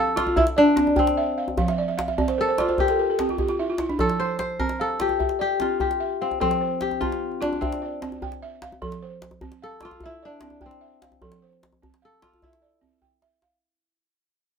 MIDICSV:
0, 0, Header, 1, 4, 480
1, 0, Start_track
1, 0, Key_signature, -1, "major"
1, 0, Tempo, 401338
1, 1886, Time_signature, 12, 3, 24, 8
1, 17448, End_track
2, 0, Start_track
2, 0, Title_t, "Balafon"
2, 0, Program_c, 0, 12
2, 0, Note_on_c, 0, 60, 76
2, 0, Note_on_c, 0, 77, 67
2, 194, Note_on_c, 0, 65, 78
2, 198, Note_off_c, 0, 60, 0
2, 433, Note_on_c, 0, 76, 66
2, 436, Note_off_c, 0, 65, 0
2, 677, Note_on_c, 0, 74, 64
2, 680, Note_off_c, 0, 77, 0
2, 911, Note_on_c, 0, 60, 70
2, 1154, Note_on_c, 0, 79, 69
2, 1160, Note_off_c, 0, 76, 0
2, 1399, Note_off_c, 0, 60, 0
2, 1402, Note_off_c, 0, 74, 0
2, 1404, Note_on_c, 0, 76, 72
2, 1647, Note_on_c, 0, 77, 61
2, 1873, Note_off_c, 0, 77, 0
2, 1882, Note_off_c, 0, 79, 0
2, 1886, Note_off_c, 0, 76, 0
2, 1887, Note_on_c, 0, 53, 78
2, 1888, Note_on_c, 0, 77, 72
2, 2015, Note_on_c, 0, 76, 69
2, 2111, Note_off_c, 0, 77, 0
2, 2131, Note_on_c, 0, 74, 65
2, 2236, Note_off_c, 0, 76, 0
2, 2249, Note_on_c, 0, 76, 61
2, 2353, Note_off_c, 0, 74, 0
2, 2362, Note_on_c, 0, 77, 68
2, 2369, Note_off_c, 0, 53, 0
2, 2473, Note_off_c, 0, 76, 0
2, 2489, Note_on_c, 0, 76, 65
2, 2589, Note_off_c, 0, 77, 0
2, 2608, Note_on_c, 0, 60, 78
2, 2608, Note_on_c, 0, 74, 66
2, 2713, Note_off_c, 0, 76, 0
2, 2730, Note_on_c, 0, 72, 69
2, 2833, Note_off_c, 0, 74, 0
2, 2848, Note_on_c, 0, 70, 66
2, 2954, Note_off_c, 0, 72, 0
2, 2972, Note_on_c, 0, 72, 66
2, 3074, Note_off_c, 0, 70, 0
2, 3091, Note_off_c, 0, 60, 0
2, 3091, Note_on_c, 0, 65, 70
2, 3091, Note_on_c, 0, 74, 66
2, 3196, Note_off_c, 0, 72, 0
2, 3208, Note_on_c, 0, 72, 64
2, 3315, Note_off_c, 0, 74, 0
2, 3332, Note_off_c, 0, 65, 0
2, 3340, Note_on_c, 0, 70, 64
2, 3434, Note_off_c, 0, 72, 0
2, 3453, Note_on_c, 0, 69, 71
2, 3561, Note_off_c, 0, 70, 0
2, 3577, Note_on_c, 0, 70, 70
2, 3677, Note_off_c, 0, 69, 0
2, 3705, Note_on_c, 0, 69, 60
2, 3799, Note_off_c, 0, 70, 0
2, 3822, Note_on_c, 0, 67, 63
2, 3823, Note_on_c, 0, 60, 72
2, 3924, Note_off_c, 0, 69, 0
2, 3948, Note_on_c, 0, 65, 60
2, 4043, Note_off_c, 0, 67, 0
2, 4057, Note_on_c, 0, 67, 68
2, 4161, Note_off_c, 0, 65, 0
2, 4176, Note_on_c, 0, 65, 66
2, 4280, Note_off_c, 0, 67, 0
2, 4298, Note_on_c, 0, 76, 68
2, 4300, Note_on_c, 0, 64, 67
2, 4301, Note_off_c, 0, 60, 0
2, 4400, Note_off_c, 0, 65, 0
2, 4421, Note_on_c, 0, 65, 68
2, 4523, Note_off_c, 0, 64, 0
2, 4541, Note_on_c, 0, 64, 68
2, 4643, Note_off_c, 0, 65, 0
2, 4657, Note_on_c, 0, 62, 65
2, 4764, Note_off_c, 0, 64, 0
2, 4773, Note_on_c, 0, 69, 69
2, 4777, Note_on_c, 0, 53, 79
2, 4779, Note_off_c, 0, 76, 0
2, 4881, Note_off_c, 0, 62, 0
2, 5021, Note_on_c, 0, 72, 63
2, 5260, Note_off_c, 0, 53, 0
2, 5497, Note_on_c, 0, 60, 75
2, 5498, Note_off_c, 0, 69, 0
2, 5737, Note_on_c, 0, 77, 62
2, 5742, Note_off_c, 0, 72, 0
2, 5978, Note_on_c, 0, 65, 74
2, 5980, Note_off_c, 0, 60, 0
2, 6211, Note_on_c, 0, 76, 60
2, 6221, Note_off_c, 0, 65, 0
2, 6448, Note_on_c, 0, 74, 63
2, 6461, Note_off_c, 0, 77, 0
2, 6698, Note_on_c, 0, 60, 70
2, 6938, Note_off_c, 0, 76, 0
2, 6945, Note_on_c, 0, 79, 62
2, 7177, Note_off_c, 0, 74, 0
2, 7179, Note_on_c, 0, 76, 69
2, 7182, Note_off_c, 0, 60, 0
2, 7430, Note_on_c, 0, 77, 64
2, 7658, Note_on_c, 0, 69, 73
2, 7662, Note_off_c, 0, 76, 0
2, 7664, Note_on_c, 0, 53, 82
2, 7665, Note_off_c, 0, 79, 0
2, 7905, Note_on_c, 0, 72, 61
2, 7908, Note_off_c, 0, 77, 0
2, 8145, Note_off_c, 0, 53, 0
2, 8382, Note_off_c, 0, 69, 0
2, 8383, Note_on_c, 0, 60, 84
2, 8625, Note_off_c, 0, 72, 0
2, 8858, Note_on_c, 0, 65, 76
2, 8864, Note_off_c, 0, 60, 0
2, 9102, Note_off_c, 0, 65, 0
2, 9109, Note_on_c, 0, 76, 63
2, 9352, Note_on_c, 0, 74, 63
2, 9591, Note_on_c, 0, 60, 72
2, 9827, Note_off_c, 0, 76, 0
2, 9838, Note_on_c, 0, 79, 68
2, 10067, Note_off_c, 0, 74, 0
2, 10068, Note_off_c, 0, 60, 0
2, 10077, Note_on_c, 0, 76, 77
2, 10315, Note_on_c, 0, 77, 65
2, 10546, Note_on_c, 0, 69, 73
2, 10548, Note_on_c, 0, 53, 87
2, 10550, Note_off_c, 0, 76, 0
2, 10550, Note_off_c, 0, 79, 0
2, 10789, Note_off_c, 0, 77, 0
2, 10793, Note_on_c, 0, 72, 60
2, 11025, Note_off_c, 0, 53, 0
2, 11263, Note_off_c, 0, 69, 0
2, 11265, Note_on_c, 0, 60, 72
2, 11507, Note_off_c, 0, 72, 0
2, 11511, Note_on_c, 0, 77, 62
2, 11742, Note_off_c, 0, 60, 0
2, 11753, Note_on_c, 0, 65, 79
2, 11986, Note_off_c, 0, 65, 0
2, 12002, Note_on_c, 0, 76, 65
2, 12224, Note_off_c, 0, 77, 0
2, 12230, Note_on_c, 0, 74, 65
2, 12464, Note_on_c, 0, 60, 72
2, 12697, Note_on_c, 0, 79, 69
2, 12709, Note_off_c, 0, 76, 0
2, 12929, Note_on_c, 0, 76, 69
2, 12940, Note_off_c, 0, 60, 0
2, 12943, Note_off_c, 0, 74, 0
2, 13183, Note_on_c, 0, 77, 62
2, 13412, Note_off_c, 0, 76, 0
2, 13415, Note_off_c, 0, 79, 0
2, 13417, Note_on_c, 0, 69, 69
2, 13421, Note_on_c, 0, 53, 78
2, 13658, Note_off_c, 0, 77, 0
2, 13662, Note_on_c, 0, 72, 60
2, 13897, Note_off_c, 0, 53, 0
2, 14134, Note_off_c, 0, 69, 0
2, 14143, Note_on_c, 0, 60, 82
2, 14376, Note_off_c, 0, 72, 0
2, 14378, Note_on_c, 0, 77, 64
2, 14616, Note_off_c, 0, 60, 0
2, 14621, Note_on_c, 0, 65, 76
2, 14855, Note_off_c, 0, 65, 0
2, 14862, Note_on_c, 0, 76, 62
2, 15093, Note_off_c, 0, 77, 0
2, 15094, Note_on_c, 0, 74, 61
2, 15325, Note_on_c, 0, 60, 75
2, 15569, Note_on_c, 0, 79, 61
2, 15573, Note_off_c, 0, 76, 0
2, 15805, Note_off_c, 0, 60, 0
2, 15809, Note_off_c, 0, 74, 0
2, 15814, Note_on_c, 0, 76, 71
2, 16058, Note_on_c, 0, 77, 61
2, 16285, Note_off_c, 0, 79, 0
2, 16288, Note_off_c, 0, 76, 0
2, 16530, Note_off_c, 0, 77, 0
2, 17448, End_track
3, 0, Start_track
3, 0, Title_t, "Kora"
3, 0, Program_c, 1, 46
3, 0, Note_on_c, 1, 60, 74
3, 0, Note_on_c, 1, 69, 98
3, 205, Note_on_c, 1, 65, 87
3, 396, Note_off_c, 1, 60, 0
3, 442, Note_on_c, 1, 64, 86
3, 514, Note_off_c, 1, 64, 0
3, 514, Note_off_c, 1, 65, 0
3, 691, Note_on_c, 1, 62, 94
3, 1184, Note_on_c, 1, 60, 71
3, 1532, Note_off_c, 1, 69, 0
3, 2699, Note_off_c, 1, 62, 0
3, 2879, Note_on_c, 1, 69, 93
3, 3112, Note_on_c, 1, 65, 71
3, 3336, Note_off_c, 1, 60, 0
3, 3351, Note_on_c, 1, 67, 73
3, 4455, Note_off_c, 1, 69, 0
3, 4788, Note_on_c, 1, 69, 101
3, 4922, Note_off_c, 1, 65, 0
3, 5017, Note_on_c, 1, 72, 87
3, 5040, Note_off_c, 1, 67, 0
3, 5248, Note_off_c, 1, 72, 0
3, 5252, Note_on_c, 1, 72, 90
3, 5496, Note_on_c, 1, 70, 91
3, 5567, Note_off_c, 1, 69, 0
3, 5752, Note_on_c, 1, 69, 101
3, 5824, Note_off_c, 1, 70, 0
3, 5995, Note_on_c, 1, 67, 81
3, 6469, Note_off_c, 1, 67, 0
3, 6473, Note_on_c, 1, 67, 97
3, 6673, Note_off_c, 1, 72, 0
3, 6714, Note_on_c, 1, 65, 89
3, 6941, Note_off_c, 1, 67, 0
3, 6946, Note_on_c, 1, 67, 75
3, 7328, Note_off_c, 1, 69, 0
3, 7435, Note_on_c, 1, 60, 77
3, 7665, Note_off_c, 1, 60, 0
3, 7670, Note_on_c, 1, 60, 99
3, 8148, Note_off_c, 1, 67, 0
3, 8153, Note_on_c, 1, 67, 84
3, 8375, Note_off_c, 1, 65, 0
3, 8380, Note_on_c, 1, 65, 86
3, 8868, Note_on_c, 1, 62, 83
3, 9097, Note_off_c, 1, 60, 0
3, 9102, Note_on_c, 1, 60, 65
3, 9842, Note_off_c, 1, 67, 0
3, 10190, Note_off_c, 1, 65, 0
3, 10877, Note_off_c, 1, 62, 0
3, 11254, Note_off_c, 1, 60, 0
3, 11523, Note_on_c, 1, 69, 98
3, 11780, Note_on_c, 1, 65, 83
3, 12026, Note_on_c, 1, 64, 92
3, 12098, Note_off_c, 1, 65, 0
3, 12261, Note_on_c, 1, 62, 89
3, 12747, Note_on_c, 1, 60, 61
3, 13099, Note_off_c, 1, 69, 0
3, 13900, Note_off_c, 1, 64, 0
3, 14270, Note_off_c, 1, 62, 0
3, 14412, Note_on_c, 1, 69, 97
3, 14621, Note_on_c, 1, 65, 82
3, 14871, Note_on_c, 1, 64, 73
3, 14900, Note_off_c, 1, 60, 0
3, 14942, Note_off_c, 1, 65, 0
3, 15988, Note_off_c, 1, 69, 0
3, 16745, Note_off_c, 1, 64, 0
3, 17448, End_track
4, 0, Start_track
4, 0, Title_t, "Djembe"
4, 85, Note_on_c, 9, 62, 25
4, 205, Note_off_c, 9, 62, 0
4, 206, Note_on_c, 9, 62, 66
4, 319, Note_on_c, 9, 63, 56
4, 325, Note_off_c, 9, 62, 0
4, 439, Note_off_c, 9, 63, 0
4, 440, Note_on_c, 9, 64, 76
4, 559, Note_off_c, 9, 64, 0
4, 559, Note_on_c, 9, 62, 54
4, 679, Note_off_c, 9, 62, 0
4, 919, Note_on_c, 9, 62, 73
4, 1039, Note_off_c, 9, 62, 0
4, 1042, Note_on_c, 9, 63, 57
4, 1150, Note_on_c, 9, 64, 74
4, 1162, Note_off_c, 9, 63, 0
4, 1270, Note_off_c, 9, 64, 0
4, 1282, Note_on_c, 9, 62, 51
4, 1402, Note_off_c, 9, 62, 0
4, 1768, Note_on_c, 9, 63, 55
4, 1883, Note_on_c, 9, 64, 72
4, 1888, Note_off_c, 9, 63, 0
4, 2003, Note_off_c, 9, 64, 0
4, 2011, Note_on_c, 9, 62, 61
4, 2131, Note_off_c, 9, 62, 0
4, 2256, Note_on_c, 9, 62, 22
4, 2375, Note_off_c, 9, 62, 0
4, 2375, Note_on_c, 9, 62, 80
4, 2488, Note_off_c, 9, 62, 0
4, 2488, Note_on_c, 9, 62, 21
4, 2488, Note_on_c, 9, 63, 48
4, 2608, Note_off_c, 9, 62, 0
4, 2608, Note_off_c, 9, 63, 0
4, 2610, Note_on_c, 9, 64, 67
4, 2727, Note_on_c, 9, 62, 58
4, 2730, Note_off_c, 9, 64, 0
4, 2847, Note_off_c, 9, 62, 0
4, 3088, Note_on_c, 9, 62, 69
4, 3208, Note_off_c, 9, 62, 0
4, 3213, Note_on_c, 9, 63, 59
4, 3327, Note_on_c, 9, 62, 22
4, 3327, Note_on_c, 9, 64, 72
4, 3333, Note_off_c, 9, 63, 0
4, 3446, Note_off_c, 9, 62, 0
4, 3446, Note_off_c, 9, 64, 0
4, 3447, Note_on_c, 9, 62, 53
4, 3566, Note_off_c, 9, 62, 0
4, 3578, Note_on_c, 9, 62, 21
4, 3698, Note_off_c, 9, 62, 0
4, 3813, Note_on_c, 9, 62, 71
4, 3933, Note_off_c, 9, 62, 0
4, 3935, Note_on_c, 9, 63, 54
4, 4047, Note_on_c, 9, 62, 22
4, 4047, Note_on_c, 9, 64, 69
4, 4055, Note_off_c, 9, 63, 0
4, 4166, Note_off_c, 9, 62, 0
4, 4166, Note_off_c, 9, 64, 0
4, 4167, Note_on_c, 9, 62, 48
4, 4287, Note_off_c, 9, 62, 0
4, 4525, Note_on_c, 9, 62, 72
4, 4644, Note_off_c, 9, 62, 0
4, 4658, Note_on_c, 9, 63, 46
4, 4771, Note_on_c, 9, 64, 66
4, 4778, Note_off_c, 9, 63, 0
4, 4891, Note_off_c, 9, 64, 0
4, 4897, Note_on_c, 9, 62, 54
4, 5016, Note_off_c, 9, 62, 0
4, 5250, Note_on_c, 9, 62, 65
4, 5369, Note_off_c, 9, 62, 0
4, 5380, Note_on_c, 9, 62, 20
4, 5496, Note_on_c, 9, 64, 63
4, 5500, Note_off_c, 9, 62, 0
4, 5613, Note_on_c, 9, 62, 55
4, 5615, Note_off_c, 9, 64, 0
4, 5733, Note_off_c, 9, 62, 0
4, 5853, Note_on_c, 9, 62, 24
4, 5973, Note_off_c, 9, 62, 0
4, 5976, Note_on_c, 9, 62, 67
4, 6090, Note_on_c, 9, 63, 57
4, 6096, Note_off_c, 9, 62, 0
4, 6209, Note_off_c, 9, 63, 0
4, 6223, Note_on_c, 9, 64, 66
4, 6329, Note_on_c, 9, 62, 52
4, 6343, Note_off_c, 9, 64, 0
4, 6448, Note_off_c, 9, 62, 0
4, 6695, Note_on_c, 9, 62, 62
4, 6814, Note_off_c, 9, 62, 0
4, 6938, Note_on_c, 9, 64, 67
4, 7058, Note_off_c, 9, 64, 0
4, 7066, Note_on_c, 9, 62, 48
4, 7186, Note_off_c, 9, 62, 0
4, 7551, Note_on_c, 9, 63, 50
4, 7670, Note_off_c, 9, 63, 0
4, 7673, Note_on_c, 9, 64, 61
4, 7786, Note_on_c, 9, 62, 55
4, 7793, Note_off_c, 9, 64, 0
4, 7905, Note_off_c, 9, 62, 0
4, 8141, Note_on_c, 9, 62, 68
4, 8261, Note_off_c, 9, 62, 0
4, 8268, Note_on_c, 9, 62, 20
4, 8268, Note_on_c, 9, 63, 49
4, 8387, Note_off_c, 9, 62, 0
4, 8387, Note_off_c, 9, 63, 0
4, 8391, Note_on_c, 9, 64, 66
4, 8511, Note_off_c, 9, 64, 0
4, 8518, Note_on_c, 9, 62, 54
4, 8638, Note_off_c, 9, 62, 0
4, 8749, Note_on_c, 9, 62, 23
4, 8869, Note_off_c, 9, 62, 0
4, 8878, Note_on_c, 9, 62, 65
4, 8998, Note_off_c, 9, 62, 0
4, 9001, Note_on_c, 9, 63, 52
4, 9117, Note_on_c, 9, 64, 71
4, 9121, Note_off_c, 9, 63, 0
4, 9236, Note_off_c, 9, 64, 0
4, 9238, Note_on_c, 9, 62, 51
4, 9358, Note_off_c, 9, 62, 0
4, 9593, Note_on_c, 9, 62, 64
4, 9713, Note_off_c, 9, 62, 0
4, 9713, Note_on_c, 9, 63, 48
4, 9832, Note_off_c, 9, 63, 0
4, 9833, Note_on_c, 9, 64, 68
4, 9948, Note_on_c, 9, 62, 48
4, 9952, Note_off_c, 9, 64, 0
4, 10068, Note_off_c, 9, 62, 0
4, 10309, Note_on_c, 9, 62, 67
4, 10429, Note_off_c, 9, 62, 0
4, 10434, Note_on_c, 9, 63, 49
4, 10549, Note_on_c, 9, 64, 68
4, 10554, Note_off_c, 9, 63, 0
4, 10667, Note_on_c, 9, 62, 57
4, 10669, Note_off_c, 9, 64, 0
4, 10786, Note_off_c, 9, 62, 0
4, 11026, Note_on_c, 9, 62, 65
4, 11137, Note_off_c, 9, 62, 0
4, 11137, Note_on_c, 9, 62, 19
4, 11137, Note_on_c, 9, 63, 52
4, 11256, Note_off_c, 9, 62, 0
4, 11256, Note_off_c, 9, 63, 0
4, 11257, Note_on_c, 9, 64, 72
4, 11377, Note_off_c, 9, 64, 0
4, 11382, Note_on_c, 9, 62, 58
4, 11501, Note_off_c, 9, 62, 0
4, 11615, Note_on_c, 9, 62, 24
4, 11727, Note_off_c, 9, 62, 0
4, 11727, Note_on_c, 9, 62, 74
4, 11846, Note_off_c, 9, 62, 0
4, 11856, Note_on_c, 9, 63, 60
4, 11965, Note_on_c, 9, 64, 69
4, 11976, Note_off_c, 9, 63, 0
4, 12085, Note_off_c, 9, 64, 0
4, 12446, Note_on_c, 9, 62, 78
4, 12560, Note_on_c, 9, 63, 54
4, 12565, Note_off_c, 9, 62, 0
4, 12680, Note_off_c, 9, 63, 0
4, 12688, Note_on_c, 9, 64, 68
4, 12807, Note_off_c, 9, 64, 0
4, 12811, Note_on_c, 9, 62, 50
4, 12930, Note_off_c, 9, 62, 0
4, 13180, Note_on_c, 9, 62, 73
4, 13296, Note_on_c, 9, 63, 60
4, 13300, Note_off_c, 9, 62, 0
4, 13413, Note_on_c, 9, 64, 72
4, 13416, Note_off_c, 9, 63, 0
4, 13533, Note_off_c, 9, 64, 0
4, 13535, Note_on_c, 9, 62, 62
4, 13654, Note_off_c, 9, 62, 0
4, 13781, Note_on_c, 9, 62, 23
4, 13900, Note_off_c, 9, 62, 0
4, 13911, Note_on_c, 9, 62, 74
4, 14022, Note_on_c, 9, 63, 52
4, 14031, Note_off_c, 9, 62, 0
4, 14142, Note_off_c, 9, 63, 0
4, 14153, Note_on_c, 9, 64, 70
4, 14273, Note_off_c, 9, 64, 0
4, 14277, Note_on_c, 9, 62, 62
4, 14389, Note_off_c, 9, 62, 0
4, 14389, Note_on_c, 9, 62, 24
4, 14509, Note_off_c, 9, 62, 0
4, 14619, Note_on_c, 9, 62, 78
4, 14739, Note_off_c, 9, 62, 0
4, 14752, Note_on_c, 9, 63, 61
4, 14858, Note_on_c, 9, 62, 25
4, 14858, Note_on_c, 9, 64, 75
4, 14872, Note_off_c, 9, 63, 0
4, 14978, Note_off_c, 9, 62, 0
4, 14978, Note_off_c, 9, 64, 0
4, 14987, Note_on_c, 9, 62, 59
4, 15104, Note_off_c, 9, 62, 0
4, 15104, Note_on_c, 9, 62, 25
4, 15224, Note_off_c, 9, 62, 0
4, 15342, Note_on_c, 9, 64, 38
4, 15462, Note_off_c, 9, 64, 0
4, 15570, Note_on_c, 9, 64, 44
4, 15690, Note_off_c, 9, 64, 0
4, 15813, Note_on_c, 9, 62, 46
4, 15933, Note_off_c, 9, 62, 0
4, 16052, Note_on_c, 9, 62, 53
4, 16171, Note_off_c, 9, 62, 0
4, 17448, End_track
0, 0, End_of_file